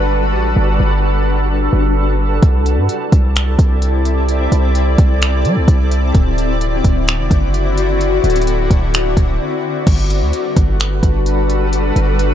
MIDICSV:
0, 0, Header, 1, 4, 480
1, 0, Start_track
1, 0, Key_signature, 1, "major"
1, 0, Tempo, 465116
1, 583, Time_signature, 4, 2, 24, 8
1, 12735, End_track
2, 0, Start_track
2, 0, Title_t, "Ambient pad"
2, 0, Program_c, 0, 92
2, 0, Note_on_c, 0, 55, 77
2, 0, Note_on_c, 0, 62, 70
2, 0, Note_on_c, 0, 66, 73
2, 0, Note_on_c, 0, 69, 72
2, 0, Note_on_c, 0, 71, 86
2, 2462, Note_off_c, 0, 55, 0
2, 2462, Note_off_c, 0, 62, 0
2, 2462, Note_off_c, 0, 66, 0
2, 2462, Note_off_c, 0, 71, 0
2, 2503, Note_on_c, 0, 48, 80
2, 2503, Note_on_c, 0, 60, 72
2, 2503, Note_on_c, 0, 64, 72
2, 2503, Note_on_c, 0, 74, 87
2, 6301, Note_off_c, 0, 69, 0
2, 6305, Note_off_c, 0, 48, 0
2, 6305, Note_off_c, 0, 64, 0
2, 6343, Note_on_c, 0, 50, 79
2, 6343, Note_on_c, 0, 64, 72
2, 6343, Note_on_c, 0, 66, 72
2, 10142, Note_off_c, 0, 60, 0
2, 10142, Note_off_c, 0, 74, 0
2, 10145, Note_off_c, 0, 50, 0
2, 10145, Note_off_c, 0, 64, 0
2, 10145, Note_off_c, 0, 66, 0
2, 10184, Note_on_c, 0, 55, 79
2, 10184, Note_on_c, 0, 62, 70
2, 10184, Note_on_c, 0, 66, 72
2, 10184, Note_on_c, 0, 69, 70
2, 10184, Note_on_c, 0, 71, 89
2, 12735, Note_off_c, 0, 55, 0
2, 12735, Note_off_c, 0, 62, 0
2, 12735, Note_off_c, 0, 66, 0
2, 12735, Note_off_c, 0, 69, 0
2, 12735, Note_off_c, 0, 71, 0
2, 12735, End_track
3, 0, Start_track
3, 0, Title_t, "808-style bass"
3, 0, Program_c, 1, 38
3, 0, Note_on_c, 1, 31, 105
3, 343, Note_on_c, 1, 33, 101
3, 359, Note_off_c, 1, 31, 0
3, 571, Note_off_c, 1, 33, 0
3, 583, Note_on_c, 1, 31, 109
3, 813, Note_off_c, 1, 31, 0
3, 823, Note_on_c, 1, 31, 102
3, 1745, Note_off_c, 1, 31, 0
3, 1783, Note_on_c, 1, 31, 98
3, 2474, Note_off_c, 1, 31, 0
3, 2503, Note_on_c, 1, 36, 103
3, 2863, Note_on_c, 1, 43, 97
3, 2878, Note_off_c, 1, 36, 0
3, 2977, Note_off_c, 1, 43, 0
3, 3224, Note_on_c, 1, 36, 104
3, 3684, Note_off_c, 1, 36, 0
3, 3701, Note_on_c, 1, 36, 96
3, 4624, Note_off_c, 1, 36, 0
3, 4663, Note_on_c, 1, 36, 107
3, 5124, Note_off_c, 1, 36, 0
3, 5143, Note_on_c, 1, 36, 109
3, 5623, Note_on_c, 1, 55, 92
3, 5639, Note_off_c, 1, 36, 0
3, 5743, Note_on_c, 1, 36, 98
3, 5758, Note_off_c, 1, 55, 0
3, 5854, Note_off_c, 1, 36, 0
3, 5860, Note_on_c, 1, 36, 104
3, 6322, Note_off_c, 1, 36, 0
3, 6343, Note_on_c, 1, 26, 112
3, 7034, Note_off_c, 1, 26, 0
3, 7064, Note_on_c, 1, 26, 108
3, 7423, Note_on_c, 1, 28, 96
3, 7439, Note_off_c, 1, 26, 0
3, 7537, Note_off_c, 1, 28, 0
3, 7541, Note_on_c, 1, 30, 100
3, 8464, Note_off_c, 1, 30, 0
3, 8503, Note_on_c, 1, 26, 105
3, 8964, Note_off_c, 1, 26, 0
3, 8984, Note_on_c, 1, 26, 107
3, 9445, Note_off_c, 1, 26, 0
3, 9462, Note_on_c, 1, 26, 101
3, 9693, Note_off_c, 1, 26, 0
3, 10183, Note_on_c, 1, 31, 112
3, 10543, Note_on_c, 1, 38, 97
3, 10559, Note_off_c, 1, 31, 0
3, 10657, Note_off_c, 1, 38, 0
3, 10904, Note_on_c, 1, 31, 111
3, 11364, Note_off_c, 1, 31, 0
3, 11382, Note_on_c, 1, 31, 108
3, 12304, Note_off_c, 1, 31, 0
3, 12343, Note_on_c, 1, 31, 108
3, 12735, Note_off_c, 1, 31, 0
3, 12735, End_track
4, 0, Start_track
4, 0, Title_t, "Drums"
4, 2503, Note_on_c, 9, 36, 112
4, 2503, Note_on_c, 9, 42, 76
4, 2606, Note_off_c, 9, 36, 0
4, 2606, Note_off_c, 9, 42, 0
4, 2745, Note_on_c, 9, 42, 69
4, 2848, Note_off_c, 9, 42, 0
4, 2983, Note_on_c, 9, 42, 79
4, 3086, Note_off_c, 9, 42, 0
4, 3224, Note_on_c, 9, 36, 95
4, 3224, Note_on_c, 9, 42, 72
4, 3327, Note_off_c, 9, 36, 0
4, 3327, Note_off_c, 9, 42, 0
4, 3465, Note_on_c, 9, 42, 78
4, 3474, Note_on_c, 9, 26, 109
4, 3568, Note_off_c, 9, 42, 0
4, 3577, Note_off_c, 9, 26, 0
4, 3701, Note_on_c, 9, 36, 93
4, 3704, Note_on_c, 9, 42, 73
4, 3805, Note_off_c, 9, 36, 0
4, 3807, Note_off_c, 9, 42, 0
4, 3942, Note_on_c, 9, 42, 82
4, 4045, Note_off_c, 9, 42, 0
4, 4183, Note_on_c, 9, 42, 72
4, 4286, Note_off_c, 9, 42, 0
4, 4423, Note_on_c, 9, 42, 78
4, 4526, Note_off_c, 9, 42, 0
4, 4665, Note_on_c, 9, 42, 68
4, 4768, Note_off_c, 9, 42, 0
4, 4903, Note_on_c, 9, 42, 80
4, 5006, Note_off_c, 9, 42, 0
4, 5143, Note_on_c, 9, 36, 96
4, 5143, Note_on_c, 9, 42, 74
4, 5246, Note_off_c, 9, 36, 0
4, 5246, Note_off_c, 9, 42, 0
4, 5384, Note_on_c, 9, 42, 81
4, 5393, Note_on_c, 9, 26, 115
4, 5487, Note_off_c, 9, 42, 0
4, 5496, Note_off_c, 9, 26, 0
4, 5623, Note_on_c, 9, 42, 70
4, 5726, Note_off_c, 9, 42, 0
4, 5860, Note_on_c, 9, 36, 93
4, 5862, Note_on_c, 9, 42, 85
4, 5963, Note_off_c, 9, 36, 0
4, 5965, Note_off_c, 9, 42, 0
4, 6103, Note_on_c, 9, 42, 72
4, 6207, Note_off_c, 9, 42, 0
4, 6342, Note_on_c, 9, 42, 78
4, 6343, Note_on_c, 9, 36, 119
4, 6446, Note_off_c, 9, 36, 0
4, 6446, Note_off_c, 9, 42, 0
4, 6585, Note_on_c, 9, 42, 68
4, 6688, Note_off_c, 9, 42, 0
4, 6823, Note_on_c, 9, 42, 77
4, 6926, Note_off_c, 9, 42, 0
4, 7063, Note_on_c, 9, 42, 70
4, 7064, Note_on_c, 9, 36, 92
4, 7166, Note_off_c, 9, 42, 0
4, 7167, Note_off_c, 9, 36, 0
4, 7304, Note_on_c, 9, 42, 81
4, 7313, Note_on_c, 9, 26, 111
4, 7407, Note_off_c, 9, 42, 0
4, 7416, Note_off_c, 9, 26, 0
4, 7542, Note_on_c, 9, 36, 91
4, 7544, Note_on_c, 9, 42, 70
4, 7645, Note_off_c, 9, 36, 0
4, 7647, Note_off_c, 9, 42, 0
4, 7783, Note_on_c, 9, 42, 85
4, 7886, Note_off_c, 9, 42, 0
4, 8024, Note_on_c, 9, 42, 75
4, 8127, Note_off_c, 9, 42, 0
4, 8264, Note_on_c, 9, 42, 75
4, 8367, Note_off_c, 9, 42, 0
4, 8504, Note_on_c, 9, 42, 61
4, 8564, Note_off_c, 9, 42, 0
4, 8564, Note_on_c, 9, 42, 61
4, 8624, Note_off_c, 9, 42, 0
4, 8624, Note_on_c, 9, 42, 62
4, 8684, Note_off_c, 9, 42, 0
4, 8684, Note_on_c, 9, 42, 61
4, 8743, Note_off_c, 9, 42, 0
4, 8743, Note_on_c, 9, 42, 77
4, 8847, Note_off_c, 9, 42, 0
4, 8984, Note_on_c, 9, 36, 94
4, 8984, Note_on_c, 9, 42, 71
4, 9087, Note_off_c, 9, 36, 0
4, 9087, Note_off_c, 9, 42, 0
4, 9225, Note_on_c, 9, 42, 82
4, 9234, Note_on_c, 9, 26, 114
4, 9328, Note_off_c, 9, 42, 0
4, 9337, Note_off_c, 9, 26, 0
4, 9462, Note_on_c, 9, 36, 90
4, 9464, Note_on_c, 9, 42, 73
4, 9565, Note_off_c, 9, 36, 0
4, 9567, Note_off_c, 9, 42, 0
4, 10183, Note_on_c, 9, 42, 76
4, 10184, Note_on_c, 9, 36, 122
4, 10184, Note_on_c, 9, 49, 100
4, 10286, Note_off_c, 9, 42, 0
4, 10287, Note_off_c, 9, 36, 0
4, 10287, Note_off_c, 9, 49, 0
4, 10425, Note_on_c, 9, 42, 70
4, 10529, Note_off_c, 9, 42, 0
4, 10663, Note_on_c, 9, 42, 82
4, 10766, Note_off_c, 9, 42, 0
4, 10903, Note_on_c, 9, 42, 75
4, 10904, Note_on_c, 9, 36, 100
4, 11006, Note_off_c, 9, 42, 0
4, 11007, Note_off_c, 9, 36, 0
4, 11144, Note_on_c, 9, 42, 79
4, 11154, Note_on_c, 9, 26, 119
4, 11248, Note_off_c, 9, 42, 0
4, 11257, Note_off_c, 9, 26, 0
4, 11381, Note_on_c, 9, 36, 94
4, 11384, Note_on_c, 9, 42, 75
4, 11485, Note_off_c, 9, 36, 0
4, 11487, Note_off_c, 9, 42, 0
4, 11622, Note_on_c, 9, 42, 86
4, 11725, Note_off_c, 9, 42, 0
4, 11863, Note_on_c, 9, 42, 73
4, 11967, Note_off_c, 9, 42, 0
4, 12103, Note_on_c, 9, 42, 78
4, 12206, Note_off_c, 9, 42, 0
4, 12345, Note_on_c, 9, 42, 70
4, 12448, Note_off_c, 9, 42, 0
4, 12583, Note_on_c, 9, 42, 81
4, 12686, Note_off_c, 9, 42, 0
4, 12735, End_track
0, 0, End_of_file